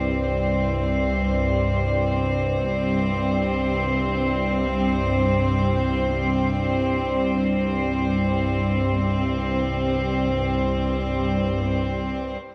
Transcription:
0, 0, Header, 1, 3, 480
1, 0, Start_track
1, 0, Tempo, 500000
1, 12044, End_track
2, 0, Start_track
2, 0, Title_t, "Cello section"
2, 0, Program_c, 0, 48
2, 0, Note_on_c, 0, 43, 61
2, 0, Note_on_c, 0, 55, 72
2, 0, Note_on_c, 0, 60, 78
2, 0, Note_on_c, 0, 72, 75
2, 12044, Note_off_c, 0, 43, 0
2, 12044, Note_off_c, 0, 55, 0
2, 12044, Note_off_c, 0, 60, 0
2, 12044, Note_off_c, 0, 72, 0
2, 12044, End_track
3, 0, Start_track
3, 0, Title_t, "Synth drone"
3, 0, Program_c, 1, 95
3, 0, Note_on_c, 1, 36, 68
3, 0, Note_on_c, 1, 43, 69
3, 11926, Note_off_c, 1, 43, 0
3, 11932, Note_off_c, 1, 36, 0
3, 11938, Note_on_c, 1, 43, 68
3, 12044, Note_off_c, 1, 43, 0
3, 12044, End_track
0, 0, End_of_file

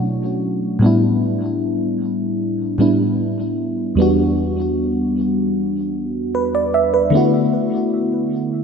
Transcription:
0, 0, Header, 1, 2, 480
1, 0, Start_track
1, 0, Tempo, 789474
1, 498, Time_signature, 4, 2, 24, 8
1, 5252, End_track
2, 0, Start_track
2, 0, Title_t, "FM electric piano"
2, 0, Program_c, 0, 5
2, 0, Control_c, 0, 64, 127
2, 0, Note_on_c, 0, 47, 54
2, 0, Note_on_c, 0, 54, 49
2, 0, Note_on_c, 0, 57, 50
2, 0, Note_on_c, 0, 61, 49
2, 0, Note_on_c, 0, 62, 48
2, 0, Note_on_c, 0, 66, 57
2, 482, Note_on_c, 0, 45, 66
2, 493, Note_on_c, 0, 55, 60
2, 495, Note_off_c, 0, 47, 0
2, 497, Note_off_c, 0, 54, 0
2, 499, Note_off_c, 0, 57, 0
2, 501, Note_off_c, 0, 61, 0
2, 502, Note_on_c, 0, 59, 62
2, 503, Note_off_c, 0, 62, 0
2, 505, Note_off_c, 0, 66, 0
2, 506, Control_c, 0, 64, 0
2, 512, Note_on_c, 0, 62, 60
2, 523, Note_on_c, 0, 64, 74
2, 602, Control_c, 0, 64, 127
2, 1666, Note_off_c, 0, 45, 0
2, 1671, Note_off_c, 0, 55, 0
2, 1676, Note_off_c, 0, 59, 0
2, 1681, Note_off_c, 0, 62, 0
2, 1687, Note_off_c, 0, 64, 0
2, 1692, Note_on_c, 0, 45, 54
2, 1698, Note_on_c, 0, 55, 49
2, 1702, Note_on_c, 0, 59, 49
2, 1707, Note_on_c, 0, 62, 48
2, 1712, Note_on_c, 0, 64, 57
2, 2404, Note_on_c, 0, 40, 71
2, 2406, Note_off_c, 0, 55, 0
2, 2413, Note_on_c, 0, 55, 61
2, 2415, Note_off_c, 0, 45, 0
2, 2416, Note_off_c, 0, 59, 0
2, 2423, Note_off_c, 0, 62, 0
2, 2423, Note_on_c, 0, 59, 62
2, 2425, Note_off_c, 0, 64, 0
2, 2427, Control_c, 0, 64, 0
2, 2433, Note_on_c, 0, 62, 60
2, 2443, Note_on_c, 0, 66, 77
2, 2539, Control_c, 0, 64, 127
2, 3827, Note_off_c, 0, 40, 0
2, 3831, Note_off_c, 0, 55, 0
2, 3836, Note_off_c, 0, 59, 0
2, 3841, Note_off_c, 0, 62, 0
2, 3846, Note_off_c, 0, 66, 0
2, 3859, Note_on_c, 0, 71, 62
2, 3973, Note_off_c, 0, 71, 0
2, 3981, Note_on_c, 0, 74, 60
2, 4093, Note_off_c, 0, 74, 0
2, 4099, Note_on_c, 0, 76, 66
2, 4213, Note_off_c, 0, 76, 0
2, 4218, Note_on_c, 0, 71, 62
2, 4319, Note_on_c, 0, 50, 68
2, 4329, Note_on_c, 0, 57, 65
2, 4339, Note_on_c, 0, 59, 62
2, 4347, Control_c, 0, 64, 0
2, 4350, Note_on_c, 0, 64, 64
2, 4360, Note_on_c, 0, 66, 77
2, 4446, Note_off_c, 0, 71, 0
2, 4465, Control_c, 0, 64, 127
2, 5252, Note_off_c, 0, 50, 0
2, 5252, Note_off_c, 0, 57, 0
2, 5252, Note_off_c, 0, 59, 0
2, 5252, Note_off_c, 0, 64, 0
2, 5252, Note_off_c, 0, 66, 0
2, 5252, End_track
0, 0, End_of_file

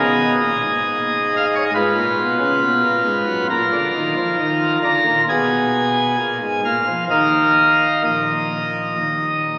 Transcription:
0, 0, Header, 1, 2, 480
1, 0, Start_track
1, 0, Tempo, 886263
1, 1896, Time_signature, 4, 2, 24, 8
1, 3346, Tempo, 933126
1, 5098, End_track
2, 0, Start_track
2, 0, Title_t, "Pipe organ"
2, 0, Program_c, 0, 19
2, 0, Note_on_c, 0, 47, 74
2, 0, Note_on_c, 0, 68, 50
2, 0, Note_on_c, 0, 75, 112
2, 189, Note_off_c, 0, 47, 0
2, 221, Note_on_c, 0, 46, 65
2, 324, Note_off_c, 0, 46, 0
2, 343, Note_on_c, 0, 44, 73
2, 726, Note_off_c, 0, 75, 0
2, 740, Note_on_c, 0, 77, 96
2, 784, Note_off_c, 0, 77, 0
2, 789, Note_on_c, 0, 75, 94
2, 833, Note_off_c, 0, 75, 0
2, 842, Note_on_c, 0, 73, 86
2, 884, Note_off_c, 0, 73, 0
2, 891, Note_on_c, 0, 75, 84
2, 918, Note_off_c, 0, 68, 0
2, 922, Note_off_c, 0, 44, 0
2, 933, Note_off_c, 0, 75, 0
2, 945, Note_on_c, 0, 65, 45
2, 947, Note_on_c, 0, 71, 98
2, 948, Note_on_c, 0, 44, 67
2, 1046, Note_off_c, 0, 44, 0
2, 1061, Note_on_c, 0, 46, 62
2, 1161, Note_off_c, 0, 46, 0
2, 1177, Note_on_c, 0, 47, 64
2, 1278, Note_off_c, 0, 47, 0
2, 1295, Note_on_c, 0, 49, 63
2, 1397, Note_off_c, 0, 49, 0
2, 1418, Note_on_c, 0, 47, 64
2, 1519, Note_off_c, 0, 47, 0
2, 1533, Note_on_c, 0, 46, 67
2, 1636, Note_off_c, 0, 46, 0
2, 1651, Note_on_c, 0, 44, 66
2, 1755, Note_off_c, 0, 44, 0
2, 1770, Note_on_c, 0, 42, 64
2, 1875, Note_off_c, 0, 42, 0
2, 1876, Note_off_c, 0, 65, 0
2, 1877, Note_off_c, 0, 71, 0
2, 1895, Note_on_c, 0, 65, 44
2, 1896, Note_on_c, 0, 46, 68
2, 1896, Note_on_c, 0, 70, 100
2, 1997, Note_off_c, 0, 46, 0
2, 2015, Note_on_c, 0, 50, 57
2, 2117, Note_off_c, 0, 50, 0
2, 2137, Note_on_c, 0, 51, 64
2, 2238, Note_off_c, 0, 51, 0
2, 2257, Note_on_c, 0, 53, 64
2, 2357, Note_off_c, 0, 53, 0
2, 2380, Note_on_c, 0, 51, 62
2, 2581, Note_off_c, 0, 51, 0
2, 2592, Note_off_c, 0, 70, 0
2, 2618, Note_on_c, 0, 50, 64
2, 2618, Note_on_c, 0, 82, 98
2, 2719, Note_off_c, 0, 50, 0
2, 2738, Note_on_c, 0, 46, 56
2, 2822, Note_off_c, 0, 82, 0
2, 2834, Note_off_c, 0, 65, 0
2, 2840, Note_off_c, 0, 46, 0
2, 2864, Note_on_c, 0, 47, 59
2, 2866, Note_on_c, 0, 80, 95
2, 2867, Note_on_c, 0, 68, 41
2, 3333, Note_off_c, 0, 47, 0
2, 3335, Note_off_c, 0, 68, 0
2, 3352, Note_on_c, 0, 46, 57
2, 3448, Note_off_c, 0, 46, 0
2, 3467, Note_on_c, 0, 44, 52
2, 3564, Note_off_c, 0, 80, 0
2, 3565, Note_off_c, 0, 44, 0
2, 3589, Note_on_c, 0, 46, 54
2, 3589, Note_on_c, 0, 77, 79
2, 3687, Note_off_c, 0, 46, 0
2, 3701, Note_on_c, 0, 53, 54
2, 3790, Note_off_c, 0, 77, 0
2, 3803, Note_off_c, 0, 53, 0
2, 3822, Note_on_c, 0, 39, 48
2, 3822, Note_on_c, 0, 70, 39
2, 3823, Note_on_c, 0, 51, 49
2, 3823, Note_on_c, 0, 63, 41
2, 3825, Note_on_c, 0, 77, 86
2, 4292, Note_off_c, 0, 39, 0
2, 4292, Note_off_c, 0, 70, 0
2, 4293, Note_off_c, 0, 51, 0
2, 4293, Note_off_c, 0, 63, 0
2, 4294, Note_off_c, 0, 77, 0
2, 4306, Note_on_c, 0, 75, 63
2, 4309, Note_on_c, 0, 34, 45
2, 4309, Note_on_c, 0, 46, 47
2, 4771, Note_off_c, 0, 34, 0
2, 4771, Note_off_c, 0, 46, 0
2, 4789, Note_on_c, 0, 39, 44
2, 4790, Note_on_c, 0, 27, 45
2, 5098, Note_off_c, 0, 27, 0
2, 5098, Note_off_c, 0, 39, 0
2, 5098, Note_off_c, 0, 75, 0
2, 5098, End_track
0, 0, End_of_file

